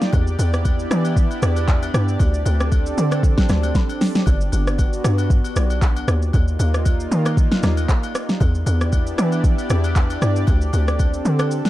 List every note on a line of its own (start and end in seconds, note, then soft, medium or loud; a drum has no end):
0.00 0.11 A#3 medium
0.00 0.11 D#4 medium
0.00 0.11 F4 medium
0.00 8.37 G4 medium
0.00 8.37 D5 medium
0.00 snare medium
0.00 shaker medium
0.13 0.37 E2 loud
0.13 2.18 B3 medium
0.13 6.04 D4 medium
0.13 2.18 E4 medium
0.13 kick loud
0.13 high agogo medium
0.13 shaker medium
0.27 shaker medium
0.39 0.87 E2 loud
0.39 high agogo medium
0.39 shaker loud
0.54 cross-stick medium
0.54 shaker soft
0.65 kick medium
0.65 high agogo medium
0.65 shaker medium
0.79 shaker medium
0.91 1.27 E3 loud
0.91 cross-stick loud
0.91 shaker loud
1.05 high agogo medium
1.05 shaker medium
1.16 kick loud
1.16 shaker medium
1.31 high agogo medium
1.31 shaker medium
1.42 1.90 E2 loud
1.42 cross-stick loud
1.42 shaker loud
1.56 high agogo medium
1.56 shaker medium
1.68 kick loud
1.68 clap medium
1.68 low woodblock medium
1.68 shaker medium
1.83 high agogo medium
1.83 shaker medium
1.94 2.18 G2 medium
1.94 cross-stick loud
1.94 shaker medium
2.08 shaker medium
2.19 2.44 D2 loud
2.19 4.25 C4 medium
2.19 4.25 A4 medium
2.19 kick loud
2.19 high agogo medium
2.19 shaker medium
2.34 shaker medium
2.45 2.94 D2 loud
2.45 high agogo medium
2.45 shaker loud
2.60 cross-stick loud
2.60 shaker soft
2.72 kick medium
2.72 high agogo medium
2.72 shaker medium
2.86 shaker medium
2.98 3.34 D3 loud
2.98 shaker loud
3.11 cross-stick medium
3.11 high agogo medium
3.11 shaker medium
3.23 kick loud
3.23 shaker medium
3.37 kick loud
3.37 snare medium
3.37 high agogo medium
3.37 shaker medium
3.49 3.73 D2 loud
3.49 cross-stick loud
3.49 snare medium
3.49 shaker loud
3.63 high agogo medium
3.63 shaker medium
3.75 kick loud
3.75 snare medium
3.75 low woodblock medium
3.75 shaker medium
3.89 high agogo medium
3.89 shaker soft
4.01 snare loud
4.01 open hi-hat medium
4.01 shaker medium
4.15 snare loud
4.15 shaker medium
4.26 4.51 G1 loud
4.26 6.06 B3 medium
4.26 6.06 F#4 medium
4.26 kick loud
4.26 high agogo medium
4.26 shaker medium
4.41 shaker medium
4.52 5.01 G1 loud
4.52 high agogo medium
4.52 shaker loud
4.67 cross-stick medium
4.67 shaker soft
4.78 kick medium
4.78 high agogo medium
4.78 shaker medium
4.93 shaker medium
5.04 5.41 G2 loud
5.04 cross-stick loud
5.04 shaker loud
5.18 high agogo medium
5.18 shaker medium
5.30 kick loud
5.30 shaker medium
5.44 high agogo medium
5.44 shaker medium
5.56 6.04 B1 loud
5.56 cross-stick loud
5.56 shaker loud
5.70 high agogo medium
5.70 shaker medium
5.82 kick loud
5.82 clap loud
5.82 low woodblock medium
5.82 shaker medium
5.96 high agogo medium
5.96 shaker medium
6.08 6.32 D#2 loud
6.08 8.38 A#3 medium
6.08 8.38 D#4 medium
6.08 8.38 F4 medium
6.08 cross-stick loud
6.08 shaker medium
6.22 shaker medium
6.33 6.58 D#2 loud
6.33 kick loud
6.33 high agogo medium
6.33 shaker medium
6.48 shaker medium
6.59 7.07 D#2 loud
6.59 high agogo medium
6.59 shaker loud
6.74 cross-stick medium
6.74 shaker soft
6.85 kick medium
6.85 high agogo medium
6.85 shaker medium
7.00 shaker medium
7.11 7.48 D#3 loud
7.11 shaker loud
7.25 cross-stick medium
7.25 high agogo medium
7.25 shaker medium
7.37 kick loud
7.37 shaker medium
7.51 snare medium
7.51 high agogo medium
7.51 shaker medium
7.63 7.87 D#2 loud
7.63 cross-stick loud
7.63 snare medium
7.63 shaker loud
7.77 high agogo medium
7.77 shaker medium
7.89 kick loud
7.89 clap loud
7.89 low woodblock medium
7.89 shaker medium
8.03 high agogo medium
8.03 shaker medium
8.15 cross-stick loud
8.15 shaker medium
8.29 snare medium
8.29 shaker medium
8.40 8.64 E2 loud
8.40 10.46 B3 medium
8.40 11.70 D4 medium
8.40 10.46 E4 medium
8.40 11.70 G4 medium
8.40 11.70 D5 medium
8.40 kick loud
8.40 high agogo medium
8.40 shaker medium
8.55 shaker medium
8.66 9.14 E2 loud
8.66 high agogo medium
8.66 shaker loud
8.81 cross-stick medium
8.81 shaker soft
8.92 kick medium
8.92 high agogo medium
8.92 shaker medium
9.07 shaker medium
9.18 9.55 E3 loud
9.18 cross-stick loud
9.18 shaker loud
9.32 high agogo medium
9.32 shaker medium
9.44 kick loud
9.44 shaker medium
9.58 high agogo medium
9.58 shaker medium
9.70 10.18 E2 loud
9.70 cross-stick loud
9.70 shaker loud
9.84 high agogo medium
9.84 shaker medium
9.96 kick loud
9.96 clap loud
9.96 low woodblock medium
9.96 shaker medium
10.10 high agogo medium
10.10 shaker medium
10.22 10.45 G2 loud
10.22 cross-stick loud
10.22 shaker medium
10.36 shaker medium
10.47 10.71 D2 loud
10.47 11.70 C4 medium
10.47 11.70 A4 medium
10.47 kick loud
10.47 high agogo medium
10.47 shaker medium
10.61 shaker medium
10.73 11.21 D2 loud
10.73 high agogo medium
10.73 shaker loud
10.88 cross-stick medium
10.88 shaker soft
10.99 kick medium
10.99 high agogo medium
10.99 shaker medium
11.14 shaker medium
11.25 11.62 D3 loud
11.25 shaker loud
11.39 cross-stick loud
11.39 high agogo medium
11.39 shaker medium
11.51 shaker medium
11.65 snare medium
11.65 high agogo medium
11.65 shaker medium